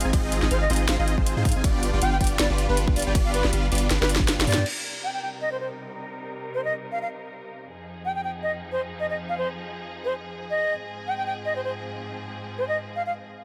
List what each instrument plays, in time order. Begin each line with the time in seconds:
Already playing: string section G#3 C4 F4
0.01 808-style bass G#1, supersaw synth C4 D#4 F4 G#4 G#5, closed hi-hat
0.13 supersaw synth C4 D#4 F4 G#4 D#5, kick, closed hi-hat, ride
0.32 closed hi-hat
0.42 808-style bass G#1, supersaw synth C4 D#4 F4 G#4 D#5, snare
0.51 808-style bass G#1, supersaw synth C4 D#4 F4 G#4 F5, flute C5, closed hi-hat
0.61 flute D#5
0.70 808-style bass G#1, supersaw synth C4 D#4 F4 G#4 D#5, closed hi-hat
0.73 closed hi-hat
0.76 closed hi-hat
0.88 808-style bass G#1, supersaw synth C4 D#4 F4 G#4 C5, flute F5, snare, closed hi-hat
0.99 808-style bass G#1, supersaw synth C4 D#4 F4 G#4 D#5, flute F5
1.08 closed hi-hat
1.18 808-style bass G#1, supersaw synth C4 D#4 F4 G#4 C5, kick
1.26 closed hi-hat
1.37 808-style bass G#2, supersaw synth C4 D#4 F4 G#4 C5
1.45 808-style bass G#2, supersaw synth C4 D#4 F4 G#4 F5, kick, closed hi-hat, open hi-hat
1.52 supersaw synth D#4 F4 G#4 G#5, closed hi-hat
1.56 808-style bass G#1, supersaw synth C4
1.64 string section G3 D4 B4, supersaw synth B3 D4 F4 G4 D5, kick, closed hi-hat, ride
1.83 closed hi-hat
1.93 808-style bass G1, supersaw synth B3 D4 F4 G4 D5
2.02 808-style bass G1, supersaw synth B3 D4 F4 G4 F5, flute G5, closed hi-hat
2.12 flute G5
2.21 808-style bass G1, supersaw synth B3 D4 F4 G4 D5, flute G5, kick, closed hi-hat
2.24 closed hi-hat
2.27 closed hi-hat
2.39 808-style bass G1, supersaw synth B3 D4 F4 G4 B4, flute D5, snare, closed hi-hat
2.50 808-style bass G1, supersaw synth B3 D4 F4 G4 D5
2.58 closed hi-hat
2.69 808-style bass G1, supersaw synth B3 D4 F4 G4 B4, flute B4
2.77 closed hi-hat
2.88 808-style bass G1, supersaw synth B3 D4 F4 G4 B4, kick
2.96 808-style bass G1, supersaw synth B3 D4 F4 G4 F5, flute D5, closed hi-hat, open hi-hat
3.02 closed hi-hat
3.06 808-style bass G1, supersaw synth B3 D4 F4 G4 G5, flute D5
3.15 808-style bass G1, supersaw synth B3 D4 F4 G4 D5, kick, closed hi-hat, ride
3.25 flute F5
3.34 flute B4, closed hi-hat
3.44 808-style bass G1, supersaw synth B3 D4 F4 G4 D5, snare
3.53 808-style bass G1, supersaw synth B3 D4 F4 G4 F5, closed hi-hat
3.72 808-style bass G1, supersaw synth B3 D4 F4 G4 D5, closed hi-hat
3.75 closed hi-hat
3.78 closed hi-hat
3.90 808-style bass G1, supersaw synth B3 D4 F4 G4 B4, snare, closed hi-hat
4.01 808-style bass G1, supersaw synth B3 D4 F4 G4 D5, flute B4, snare
4.09 closed hi-hat
4.16 808-style bass G1, kick, snare
4.20 supersaw synth B3 D4 F4 G4 B4
4.28 snare, closed hi-hat
4.38 808-style bass G1, supersaw synth B3 D4 F4 G4 B4, snare
4.47 808-style bass G2, supersaw synth B3 D4 F4 G4 F5, flute D5, closed hi-hat, open hi-hat
4.53 808-style bass G2, supersaw synth B3 F4 G5, snare, closed hi-hat
4.57 supersaw synth D4 G4
4.66 string section C3 G3 D#4 A#4, crash
5.04 flute G5
5.14 flute G5
5.22 flute G5
5.41 flute D#5
5.52 flute C5
5.60 flute C5
6.54 flute C5
6.65 flute D#5
6.92 flute F5
7.02 flute F5
7.68 string section F2 F3 D#4 G#4
8.05 flute G5
8.15 flute G5
8.24 flute G5
8.43 flute D#5
8.72 flute C5
9.00 flute D#5
9.10 flute D#5
9.29 flute F5
9.38 flute C5
10.05 flute C5
10.50 flute D#5
10.70 string section G#2 F3 C4
11.07 flute G5
11.18 flute G5
11.27 flute G5
11.45 flute D#5
11.56 flute C5
11.64 flute C5
12.58 flute C5
12.68 flute D#5
12.96 flute F5
13.06 flute F5